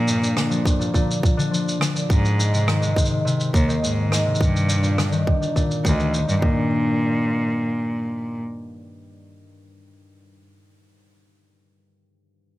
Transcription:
Already playing: harp A#2, cello A#2
0.07 harp G2, shaker
0.22 harp A#2, shaker
0.37 harp D3, cross-stick, shaker
0.50 harp F3, shaker
0.64 harp G2, kick, shaker
0.79 harp A#2, shaker
0.94 harp A#2, kick, shaker
1.11 shaker
1.23 harp A#2, kick, shaker
1.37 harp D3, shaker
1.51 harp F3, shaker
1.69 shaker
1.80 harp D3, cross-stick, shaker
1.95 harp A#2, shaker
2.10 cello G#2, kick, shaker
2.25 shaker
2.38 harp G#2, shaker
2.53 harp C3, shaker
2.67 harp D#3, cross-stick, shaker
2.82 harp G#3, shaker
2.96 harp G#2, kick, shaker
3.05 shaker
3.10 harp C3
3.25 harp C3, shaker
3.40 shaker
3.54 cello D#2, harp C3, kick, shaker
3.68 harp D#3, shaker
3.82 cello G#2, harp G#3, shaker
4.11 harp D#3, cross-stick, shaker
4.25 harp C3
4.35 shaker
4.41 cello G2, kick, shaker
4.56 shaker
4.68 harp G2, shaker
4.83 harp A#2, shaker
4.97 harp D3, cross-stick, shaker
5.12 harp D#3, shaker
5.26 harp G2, kick
5.41 harp A#2, shaker
5.55 harp A#2, kick, shaker
5.71 shaker
5.85 cello D2, harp D#3, kick, shaker
5.98 harp D#3, shaker
6.13 harp D#3, shaker
6.27 cello G2, harp G3, shaker
6.41 harp G2, cello A#2, kick

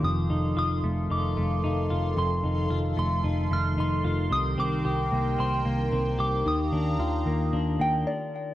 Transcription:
Already playing: analog synth pad D#3 F5, clean electric guitar F4
0.02 picked electric bass F1, clean electric guitar F2, analog synth pad A4 C6, synth bell D#6
0.30 picked electric bass F1, clean electric guitar D#4
0.57 picked electric bass F1, clean electric guitar F4, synth bell D#6
0.84 picked electric bass F1, clean electric guitar A3
1.10 picked electric bass F1, clean electric guitar D#4, synth bell D6
1.37 picked electric bass F1, clean electric guitar A3
1.64 picked electric bass F1, clean electric guitar D#4
1.90 picked electric bass F1, clean electric guitar F4
2.16 picked electric bass F1, clean electric guitar F2, synth bell C6
2.44 picked electric bass F1, clean electric guitar D#4
2.71 picked electric bass F1, clean electric guitar F4
2.97 picked electric bass F1, clean electric guitar A3, synth bell C6
3.24 picked electric bass F1, clean electric guitar D#4
3.51 picked electric bass F1, clean electric guitar A3, synth bell F6
3.78 picked electric bass F1, clean electric guitar D#4, synth bell C6
4.04 picked electric bass F1, clean electric guitar F4
4.31 picked electric bass C2, clean electric guitar C3, analog synth pad D#3 A#4 G5, synth bell D#6
4.58 picked electric bass C2, clean electric guitar C4, synth bell D6
4.85 picked electric bass C2, clean electric guitar G4
5.12 picked electric bass C2, clean electric guitar A#3
5.39 picked electric bass C2, clean electric guitar C4, synth bell C6
5.65 picked electric bass C2, clean electric guitar A#3
5.93 picked electric bass C2, clean electric guitar C4
6.19 picked electric bass C2, clean electric guitar G4, synth bell D6
6.45 picked electric bass D#2, clean electric guitar D#3, analog synth pad G4 F5 A#5, synth bell D#6
6.73 picked electric bass D#2, clean electric guitar D4
6.99 picked electric bass D#2, clean electric guitar F4
7.26 picked electric bass D#2, clean electric guitar A#3
7.53 picked electric bass D#2, clean electric guitar D4
7.80 picked electric bass D#2, clean electric guitar A#3, synth bell G5
8.07 synth bell D5

